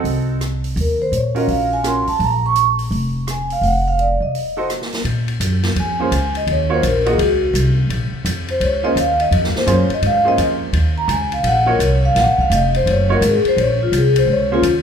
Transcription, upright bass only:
0.04 0.72 C2 medium
0.76 1.09 D#2 medium
1.12 1.45 A#2 medium
1.48 2.02 A#1 medium
2.07 muted upright bass stroke soft
2.19 2.87 A#1 medium
2.91 3.59 F1 medium
3.61 4.16 F1 medium
4.20 4.33 C2 medium
5.04 5.39 A#2 medium
5.40 5.75 F#2 medium
5.76 6.10 F2 medium
6.11 6.46 C#2 medium
6.47 6.82 D#2 medium
6.82 7.17 A#1 medium
7.18 7.53 C#2 medium
7.53 7.88 C2 medium
7.89 8.11 A#1 medium
8.12 muted upright bass stroke soft
8.25 8.59 F2 medium
8.60 8.95 C#2 medium
8.96 9.30 D#2 medium
9.31 9.53 F2 medium
9.54 muted upright bass stroke soft
9.67 9.88 F#2 medium
9.90 muted upright bass stroke soft
10.02 10.37 G#2 medium
10.38 10.72 F2 medium
10.73 11.07 D#2 medium
11.08 11.43 C#2 medium
11.43 11.78 A#1 medium
11.79 12.14 C2 medium
12.15 12.28 A#1 medium
12.26 12.38 F#1 medium
12.39 12.49 D#1 medium
12.50 12.85 F1 medium
12.86 13.20 F#1 medium
13.21 13.42 G#1 medium
13.44 muted upright bass stroke soft
13.57 13.91 A#1 medium
13.92 14.26 C2 medium
14.27 14.62 C#2 medium
14.62 14.82 D#2 medium

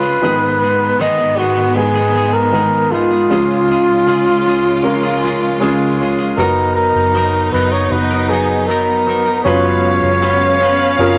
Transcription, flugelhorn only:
0.00 1.03 B4 medium
1.01 1.39 D#5 medium
1.38 1.77 F#4 medium
1.76 2.35 G#4 medium
2.33 2.93 A#4 medium
2.92 5.61 F4 medium
6.37 6.73 A#4 medium
6.75 7.49 A#4 medium
7.53 7.74 B4 medium
7.72 7.93 C#5 medium
7.92 8.31 B4 medium
8.29 8.69 G#4 medium
8.67 9.44 A#4 medium
9.44 11.18 C#5 medium

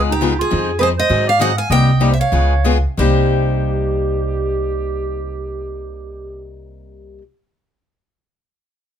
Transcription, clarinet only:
0.10 0.37 D#4 medium
0.39 0.74 F4 medium
0.79 0.81 G4 soft
0.79 0.88 G#4 medium
0.98 1.25 C5 medium
1.27 1.38 D5 medium
1.41 1.56 D#5 medium
1.57 1.69 F5 medium
1.70 2.07 D#5 medium
2.10 2.18 C5 medium
2.19 2.80 C#5 medium
2.97 6.47 G4 medium

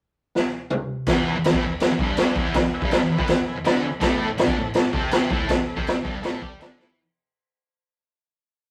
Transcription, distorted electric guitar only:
1.08 1.35 E2 medium
1.08 1.36 E3 loud
1.36 1.45 E2 medium
1.46 1.54 E2 medium
1.54 1.62 A2 medium
1.54 1.63 A3 medium
1.64 1.78 E2 medium
1.91 2.00 E2 medium
2.01 2.36 G2 medium
2.01 2.37 G3 loud
2.38 2.54 E2 medium
2.38 2.55 E3 loud
2.57 muted distorted electric guitar stroke medium
2.84 3.01 G2 medium
2.84 3.01 G3 loud
3.01 3.09 E2 medium
3.10 3.19 E2 medium
3.19 3.27 B2 loud
3.19 3.28 B3 loud
3.28 3.43 E2 medium
3.56 3.65 E2 medium
3.65 3.82 D3 medium
3.65 3.84 D4 loud
3.84 muted distorted electric guitar stroke medium
4.01 4.28 A2 loud
4.01 4.29 A3 loud
4.29 4.37 A2 medium
4.38 4.46 A2 medium
4.46 4.55 D3 medium
4.46 4.56 D4 loud
4.56 4.71 A2 medium
4.84 4.92 A2 medium
4.93 5.30 C3 medium
4.93 5.31 C4 medium
5.30 5.48 A2 medium
5.30 5.49 A3 loud
5.49 muted distorted electric guitar stroke medium
5.77 5.94 C3 medium
5.77 5.96 C4 medium
5.95 6.04 A2 medium
6.04 6.22 G2 medium
6.04 6.23 G3 loud
6.22 6.41 A2 medium
6.22 6.42 A3 loud
6.41 6.60 G3 medium
6.41 6.60 G4 medium
6.59 6.78 D3 medium
6.59 6.79 D4 loud
6.79 6.97 E3 medium
6.79 6.98 E4 loud

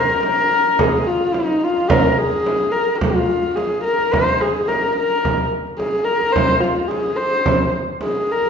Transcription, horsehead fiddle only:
0.00 0.23 A#4 loud
0.24 0.81 A#4 loud
0.80 1.09 G#4 medium
1.07 1.36 F4 loud
1.34 1.65 D#4 loud
1.64 1.92 F4 loud
1.90 2.12 A#4 loud
2.12 2.20 A#4 medium
2.18 2.73 G#4 loud
2.72 3.01 A#4 medium
2.99 3.57 F4 medium
3.56 3.84 G#4 medium
3.84 4.15 A#4 medium
4.13 4.43 C5 loud
4.42 4.69 G#4 medium
4.68 4.96 A#4 medium
4.96 5.48 A#4 loud
5.79 6.06 G#4 loud
6.04 6.34 A#4 loud
6.32 6.62 C5 loud
6.61 6.89 F4 medium
6.88 7.18 G#4 medium
7.17 7.73 C5 loud
8.03 8.33 G#4 medium
8.32 8.50 A#4 medium

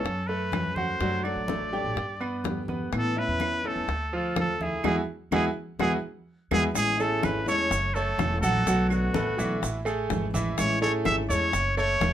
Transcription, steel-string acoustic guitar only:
0.04 muted steel-string acoustic guitar stroke medium
0.52 0.99 F#3 soft
0.52 0.99 A3 soft
0.52 1.00 C#4 medium
0.52 1.00 F#4 soft
1.01 1.24 C3 medium
1.01 1.24 F#3 medium
1.01 1.24 A3 medium
1.01 1.24 D4 medium
1.01 1.23 F#4 medium
1.25 1.72 F#3 medium
1.25 1.72 A3 medium
1.25 1.72 D4 medium
1.25 1.71 F#4 medium
1.73 1.97 F#3 medium
1.73 1.96 A3 medium
1.73 1.96 D4 medium
1.73 1.96 F#4 medium
1.97 muted steel-string acoustic guitar stroke medium
2.44 2.91 D3 soft
2.44 2.92 G3 soft
2.44 2.92 B3 soft
2.44 2.92 G4 medium
2.93 3.15 E3 medium
2.93 3.16 B3 medium
2.93 3.16 C#4 medium
2.93 3.15 E4 medium
3.16 3.64 B3 medium
3.16 3.64 C#4 medium
3.16 3.62 E4 medium
3.63 3.88 B3 medium
3.63 3.88 C#4 medium
3.63 3.87 E4 medium
3.89 muted steel-string acoustic guitar stroke medium
4.36 4.83 D3 soft
4.36 4.83 A3 soft
4.36 4.83 D4 soft
4.36 4.83 F4 soft
4.84 4.99 G#3 loud
4.84 4.99 B3 medium
4.84 4.99 E4 medium
5.32 5.47 G#3 medium
5.32 5.48 B3 medium
5.32 5.47 E4 medium
5.80 5.95 G#3 loud
5.80 5.95 B3 medium
5.80 5.95 E4 medium
6.52 6.67 G#3 medium
6.52 6.67 B3 medium
6.52 6.67 E4 medium
6.74 6.98 E3 medium
6.74 6.98 G#3 medium
6.74 6.98 C#4 medium
6.74 6.96 E4 medium
6.98 7.46 C#4 medium
6.98 7.45 E4 medium
7.46 7.71 G#3 medium
7.46 7.70 C#4 medium
7.46 7.70 E4 medium
7.71 muted steel-string acoustic guitar stroke medium
8.19 8.66 E3 soft
8.19 8.65 A3 soft
8.19 8.66 C#4 soft
8.19 8.66 F#4 soft
8.65 8.89 B2 medium
8.65 8.89 D3 medium
8.65 8.90 A3 medium
8.65 8.89 B3 medium
8.65 8.89 F#4 medium
8.90 9.38 D3 medium
8.90 9.37 A3 medium
8.90 9.37 B3 medium
8.90 9.36 F#4 medium
9.37 9.62 D3 medium
9.37 9.61 A3 medium
9.37 9.61 B3 medium
9.37 9.61 F#4 medium
9.62 muted steel-string acoustic guitar stroke medium
10.09 10.56 E3 soft
10.09 10.57 G#3 soft
10.09 10.57 C#4 soft
10.09 10.57 E4 soft
10.57 10.81 E3 medium
10.57 10.81 G#3 medium
10.57 10.81 C#4 medium
10.57 10.80 E4 medium
10.81 11.29 C#4 medium
10.81 11.28 E4 medium
11.29 11.53 G#3 medium
11.29 11.53 C#4 medium
11.29 11.52 E4 medium
11.53 muted steel-string acoustic guitar stroke medium
12.02 12.13 E3 soft
12.02 12.13 A3 soft
12.02 12.13 C#4 soft
12.02 12.13 F#4 medium

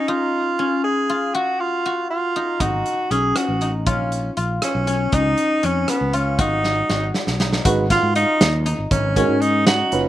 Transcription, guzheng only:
0.00 0.59 C#4 medium
0.00 1.09 F4 medium
0.08 2.35 D#4 medium
0.59 3.11 C#4 medium
1.09 1.41 F4 medium
1.34 1.85 F#4 medium
1.86 3.92 F#4 medium
2.36 2.60 D#4 medium
2.60 3.61 D#4 medium
3.11 4.87 C#4 medium
3.61 5.12 D#4 medium
3.86 4.36 F4 medium
4.37 6.13 F4 medium
4.87 5.63 C#4 medium
5.13 7.39 D#4 medium
5.63 8.53 C#4 medium
6.13 6.45 F4 medium
6.39 6.89 F#4 medium
6.89 7.65 F#4 medium
7.40 8.15 D#4 medium
7.65 7.96 F#4 medium
7.90 10.09 F4 medium
8.16 8.65 D#4 medium
8.66 9.66 D#4 medium
9.16 10.09 C#4 medium
9.67 10.09 D#4 medium

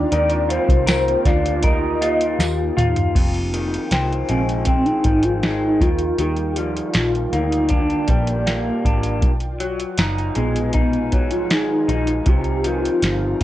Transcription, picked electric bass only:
0.12 0.58 D#2 medium
0.69 1.14 C2 loud
1.26 2.36 D2 medium
2.39 2.70 D#2 medium
2.78 3.08 D#2 medium
3.16 3.76 F1 medium
3.91 4.22 C2 medium
4.29 4.90 A#1 medium
5.05 5.82 G#1 medium
5.81 6.11 D#2 medium
6.19 6.80 D#2 medium
6.95 7.26 A#1 medium
7.33 7.94 D2 medium
8.09 8.70 A#1 medium
8.85 9.22 G#1 medium
9.22 9.84 B1 medium
9.99 10.29 F#1 medium
10.37 11.13 A#1 medium
11.13 11.74 G#1 medium
11.89 12.19 A#1 medium
12.27 12.87 C2 medium
13.03 13.33 G1 medium

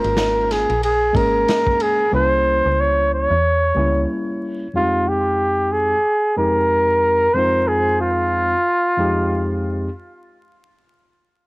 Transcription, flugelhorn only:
0.00 0.53 A#4 medium
0.52 0.83 G#4 medium
0.84 1.18 G#4 medium
1.16 1.84 A#4 medium
1.82 2.14 G#4 medium
2.15 2.82 C5 loud
2.80 3.12 C#5 loud
3.14 4.07 C#5 loud
4.76 5.10 F4 medium
5.08 5.73 G4 medium
5.72 6.37 G#4 medium
6.38 7.36 A#4 medium
7.34 7.69 C5 loud
7.68 8.01 G#4 medium
8.01 9.60 F4 medium

